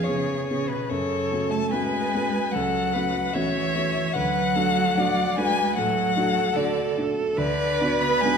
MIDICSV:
0, 0, Header, 1, 5, 480
1, 0, Start_track
1, 0, Tempo, 825309
1, 517, Time_signature, 4, 2, 24, 8
1, 1476, Tempo, 806452
1, 4356, Tempo, 851064
1, 4920, End_track
2, 0, Start_track
2, 0, Title_t, "Violin"
2, 0, Program_c, 0, 40
2, 22, Note_on_c, 0, 73, 54
2, 271, Note_off_c, 0, 73, 0
2, 277, Note_on_c, 0, 73, 58
2, 400, Note_on_c, 0, 71, 53
2, 408, Note_off_c, 0, 73, 0
2, 517, Note_on_c, 0, 73, 64
2, 526, Note_off_c, 0, 71, 0
2, 879, Note_on_c, 0, 81, 62
2, 888, Note_off_c, 0, 73, 0
2, 987, Note_off_c, 0, 81, 0
2, 991, Note_on_c, 0, 80, 67
2, 1461, Note_on_c, 0, 78, 66
2, 1470, Note_off_c, 0, 80, 0
2, 1948, Note_on_c, 0, 76, 77
2, 1957, Note_off_c, 0, 78, 0
2, 2423, Note_on_c, 0, 78, 79
2, 2432, Note_off_c, 0, 76, 0
2, 3154, Note_on_c, 0, 80, 85
2, 3163, Note_off_c, 0, 78, 0
2, 3388, Note_off_c, 0, 80, 0
2, 3392, Note_on_c, 0, 78, 79
2, 3867, Note_on_c, 0, 74, 70
2, 3876, Note_off_c, 0, 78, 0
2, 4109, Note_off_c, 0, 74, 0
2, 4347, Note_on_c, 0, 74, 84
2, 4713, Note_on_c, 0, 83, 81
2, 4721, Note_off_c, 0, 74, 0
2, 4822, Note_on_c, 0, 80, 97
2, 4831, Note_off_c, 0, 83, 0
2, 4920, Note_off_c, 0, 80, 0
2, 4920, End_track
3, 0, Start_track
3, 0, Title_t, "Viola"
3, 0, Program_c, 1, 41
3, 0, Note_on_c, 1, 68, 61
3, 517, Note_off_c, 1, 68, 0
3, 529, Note_on_c, 1, 69, 66
3, 996, Note_on_c, 1, 71, 60
3, 1004, Note_off_c, 1, 69, 0
3, 1481, Note_on_c, 1, 69, 59
3, 1489, Note_off_c, 1, 71, 0
3, 1712, Note_on_c, 1, 71, 51
3, 1721, Note_off_c, 1, 69, 0
3, 1957, Note_on_c, 1, 73, 65
3, 1966, Note_off_c, 1, 71, 0
3, 2440, Note_off_c, 1, 73, 0
3, 2443, Note_on_c, 1, 71, 64
3, 2677, Note_on_c, 1, 69, 58
3, 2686, Note_off_c, 1, 71, 0
3, 2928, Note_on_c, 1, 74, 64
3, 2937, Note_off_c, 1, 69, 0
3, 3167, Note_on_c, 1, 71, 62
3, 3176, Note_off_c, 1, 74, 0
3, 3406, Note_on_c, 1, 69, 58
3, 3415, Note_off_c, 1, 71, 0
3, 3637, Note_off_c, 1, 69, 0
3, 3641, Note_on_c, 1, 69, 70
3, 4351, Note_on_c, 1, 71, 98
3, 4360, Note_off_c, 1, 69, 0
3, 4920, Note_off_c, 1, 71, 0
3, 4920, End_track
4, 0, Start_track
4, 0, Title_t, "Grand piano"
4, 0, Program_c, 2, 0
4, 0, Control_c, 2, 64, 127
4, 0, Note_on_c, 2, 41, 37
4, 0, Note_on_c, 2, 59, 34
4, 0, Note_on_c, 2, 61, 37
4, 0, Note_on_c, 2, 68, 34
4, 51, Note_off_c, 2, 59, 0
4, 51, Note_off_c, 2, 61, 0
4, 51, Note_on_c, 2, 59, 29
4, 51, Note_on_c, 2, 61, 33
4, 54, Note_off_c, 2, 68, 0
4, 54, Note_on_c, 2, 68, 36
4, 262, Note_off_c, 2, 59, 0
4, 262, Note_off_c, 2, 61, 0
4, 264, Note_off_c, 2, 68, 0
4, 293, Note_on_c, 2, 59, 32
4, 294, Note_on_c, 2, 61, 32
4, 299, Note_on_c, 2, 68, 34
4, 501, Note_off_c, 2, 59, 0
4, 502, Note_off_c, 2, 61, 0
4, 504, Note_off_c, 2, 68, 0
4, 527, Control_c, 2, 64, 0
4, 528, Note_on_c, 2, 42, 49
4, 529, Note_off_c, 2, 41, 0
4, 628, Control_c, 2, 64, 127
4, 755, Note_off_c, 2, 42, 0
4, 764, Note_on_c, 2, 57, 34
4, 766, Note_on_c, 2, 61, 31
4, 767, Note_on_c, 2, 66, 33
4, 979, Note_off_c, 2, 57, 0
4, 980, Note_off_c, 2, 61, 0
4, 980, Note_off_c, 2, 66, 0
4, 1007, Note_on_c, 2, 61, 43
4, 1008, Note_on_c, 2, 66, 44
4, 1009, Note_on_c, 2, 57, 40
4, 1221, Note_off_c, 2, 57, 0
4, 1221, Note_off_c, 2, 61, 0
4, 1221, Note_off_c, 2, 66, 0
4, 1244, Note_on_c, 2, 57, 36
4, 1246, Note_on_c, 2, 61, 36
4, 1246, Note_on_c, 2, 66, 36
4, 1456, Note_off_c, 2, 57, 0
4, 1457, Note_off_c, 2, 61, 0
4, 1457, Note_off_c, 2, 66, 0
4, 1486, Note_on_c, 2, 37, 47
4, 1714, Note_off_c, 2, 37, 0
4, 1721, Note_on_c, 2, 57, 34
4, 1725, Note_on_c, 2, 61, 40
4, 1726, Note_on_c, 2, 66, 41
4, 1933, Note_off_c, 2, 57, 0
4, 1935, Note_off_c, 2, 61, 0
4, 1936, Note_off_c, 2, 66, 0
4, 1957, Note_on_c, 2, 57, 39
4, 1961, Note_on_c, 2, 61, 36
4, 1962, Note_on_c, 2, 66, 42
4, 2173, Note_off_c, 2, 57, 0
4, 2175, Note_off_c, 2, 61, 0
4, 2176, Note_off_c, 2, 66, 0
4, 2196, Note_on_c, 2, 57, 31
4, 2202, Note_on_c, 2, 61, 34
4, 2204, Note_on_c, 2, 66, 35
4, 2416, Note_off_c, 2, 57, 0
4, 2419, Note_off_c, 2, 61, 0
4, 2420, Note_off_c, 2, 66, 0
4, 2439, Note_on_c, 2, 38, 47
4, 2451, Control_c, 2, 64, 0
4, 2527, Control_c, 2, 64, 127
4, 2675, Note_off_c, 2, 38, 0
4, 2676, Note_on_c, 2, 57, 39
4, 2678, Note_on_c, 2, 62, 38
4, 2680, Note_on_c, 2, 66, 36
4, 2897, Note_off_c, 2, 57, 0
4, 2898, Note_off_c, 2, 62, 0
4, 2899, Note_off_c, 2, 66, 0
4, 2926, Note_on_c, 2, 57, 47
4, 2926, Note_on_c, 2, 62, 46
4, 2931, Note_on_c, 2, 66, 47
4, 3142, Note_off_c, 2, 57, 0
4, 3142, Note_off_c, 2, 62, 0
4, 3144, Note_off_c, 2, 66, 0
4, 3164, Note_on_c, 2, 62, 39
4, 3166, Note_on_c, 2, 57, 44
4, 3171, Note_on_c, 2, 66, 49
4, 3377, Note_off_c, 2, 62, 0
4, 3378, Note_off_c, 2, 57, 0
4, 3381, Note_off_c, 2, 66, 0
4, 3401, Note_on_c, 2, 45, 46
4, 3627, Note_off_c, 2, 45, 0
4, 3636, Note_on_c, 2, 57, 46
4, 3636, Note_on_c, 2, 62, 45
4, 3637, Note_on_c, 2, 66, 52
4, 3848, Note_off_c, 2, 57, 0
4, 3848, Note_off_c, 2, 62, 0
4, 3848, Note_off_c, 2, 66, 0
4, 3867, Note_on_c, 2, 57, 37
4, 3871, Note_on_c, 2, 62, 35
4, 3874, Note_on_c, 2, 66, 46
4, 4085, Note_off_c, 2, 57, 0
4, 4087, Note_off_c, 2, 62, 0
4, 4089, Note_off_c, 2, 66, 0
4, 4116, Note_on_c, 2, 57, 42
4, 4120, Note_on_c, 2, 62, 44
4, 4121, Note_on_c, 2, 66, 47
4, 4334, Note_off_c, 2, 57, 0
4, 4336, Note_off_c, 2, 62, 0
4, 4337, Note_off_c, 2, 66, 0
4, 4357, Note_on_c, 2, 38, 62
4, 4367, Control_c, 2, 64, 0
4, 4465, Control_c, 2, 64, 127
4, 4587, Note_off_c, 2, 38, 0
4, 4601, Note_on_c, 2, 62, 48
4, 4603, Note_on_c, 2, 59, 45
4, 4605, Note_on_c, 2, 66, 47
4, 4816, Note_off_c, 2, 62, 0
4, 4817, Note_off_c, 2, 59, 0
4, 4818, Note_off_c, 2, 66, 0
4, 4847, Note_on_c, 2, 59, 51
4, 4850, Note_on_c, 2, 62, 50
4, 4850, Note_on_c, 2, 66, 49
4, 4920, Note_off_c, 2, 59, 0
4, 4920, Note_off_c, 2, 62, 0
4, 4920, Note_off_c, 2, 66, 0
4, 4920, End_track
5, 0, Start_track
5, 0, Title_t, "Cello"
5, 0, Program_c, 3, 42
5, 46, Note_on_c, 3, 49, 57
5, 283, Note_off_c, 3, 49, 0
5, 295, Note_on_c, 3, 49, 58
5, 408, Note_on_c, 3, 47, 49
5, 417, Note_off_c, 3, 49, 0
5, 517, Note_on_c, 3, 49, 54
5, 526, Note_off_c, 3, 47, 0
5, 871, Note_on_c, 3, 57, 58
5, 880, Note_off_c, 3, 49, 0
5, 998, Note_on_c, 3, 56, 71
5, 1007, Note_off_c, 3, 57, 0
5, 1466, Note_on_c, 3, 54, 61
5, 1475, Note_off_c, 3, 56, 0
5, 1956, Note_on_c, 3, 52, 64
5, 1965, Note_off_c, 3, 54, 0
5, 2440, Note_on_c, 3, 54, 66
5, 2449, Note_off_c, 3, 52, 0
5, 3160, Note_off_c, 3, 54, 0
5, 3164, Note_on_c, 3, 56, 57
5, 3383, Note_on_c, 3, 54, 68
5, 3392, Note_off_c, 3, 56, 0
5, 3858, Note_off_c, 3, 54, 0
5, 3862, Note_on_c, 3, 50, 61
5, 4102, Note_off_c, 3, 50, 0
5, 4344, Note_on_c, 3, 50, 75
5, 4711, Note_on_c, 3, 59, 74
5, 4719, Note_off_c, 3, 50, 0
5, 4832, Note_on_c, 3, 56, 91
5, 4840, Note_off_c, 3, 59, 0
5, 4920, Note_off_c, 3, 56, 0
5, 4920, End_track
0, 0, End_of_file